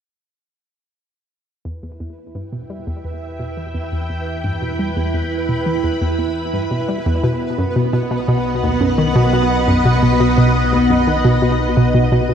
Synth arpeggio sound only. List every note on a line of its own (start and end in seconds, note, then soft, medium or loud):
1.65 1.71 E2 medium
1.83 1.98 E2 medium
2.00 2.06 E2 medium
2.35 2.41 G2 medium
2.52 2.63 B2 medium
2.70 2.80 G3 medium
2.87 3.02 E2 medium
3.05 3.11 E2 medium
3.40 3.46 B2 medium
3.57 3.67 E3 medium
3.75 3.81 E2 medium
3.92 4.07 E2 medium
4.10 4.16 E2 medium
4.44 4.50 G2 medium
4.62 4.72 B2 medium
4.79 4.89 G3 medium
4.97 5.12 E2 medium
5.14 5.20 E2 medium
5.49 5.55 B2 medium
5.66 5.76 E3 medium
5.84 5.90 E2 medium
6.01 6.16 E2 medium
6.19 6.25 E2 medium
6.54 6.60 G2 medium
6.71 6.81 B2 medium
6.89 6.99 G3 medium
7.06 7.21 E2 medium
7.24 7.30 B2 medium
7.58 7.64 F#2 medium
7.76 7.86 B2 medium
7.93 7.99 B2 medium
8.11 8.26 B2 medium
8.28 8.34 B2 medium
8.63 8.69 D#2 medium
8.81 8.91 F#2 medium
8.98 9.08 D#3 medium
9.16 9.31 B2 loud
9.33 9.39 B2 medium
9.68 9.74 F#2 medium
9.85 9.95 B2 medium
10.03 10.09 B2 medium
10.20 10.35 B2 medium
10.38 10.44 B2 medium
10.72 10.78 D#2 medium
10.90 11.00 F#2 medium
11.07 11.17 D#3 medium
11.25 11.40 B2 medium
11.42 11.48 B2 medium
11.77 11.87 B2 medium
11.94 12.04 B2 medium
12.12 12.22 B2 medium
12.29 12.34 B2 medium